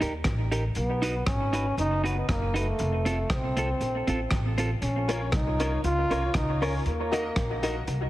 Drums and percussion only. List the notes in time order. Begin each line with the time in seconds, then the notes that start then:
0.02 closed hi-hat
0.24 kick, cross-stick, closed hi-hat
0.52 closed hi-hat
0.75 closed hi-hat
1.03 closed hi-hat
1.26 kick, cross-stick, closed hi-hat
1.53 closed hi-hat
1.78 closed hi-hat
2.06 closed hi-hat
2.29 kick, cross-stick, closed hi-hat
2.56 closed hi-hat
2.79 closed hi-hat
3.06 closed hi-hat
3.30 kick, cross-stick, closed hi-hat
3.57 closed hi-hat
3.81 closed hi-hat
4.07 closed hi-hat
4.31 kick, cross-stick, closed hi-hat
4.58 closed hi-hat
4.82 closed hi-hat
5.09 closed hi-hat
5.32 kick, cross-stick, closed hi-hat
5.60 closed hi-hat
5.84 closed hi-hat
6.11 closed hi-hat
6.34 kick, cross-stick, closed hi-hat
6.62 open hi-hat
6.86 closed hi-hat
7.13 closed hi-hat
7.36 kick, cross-stick, closed hi-hat
7.63 closed hi-hat
7.87 closed hi-hat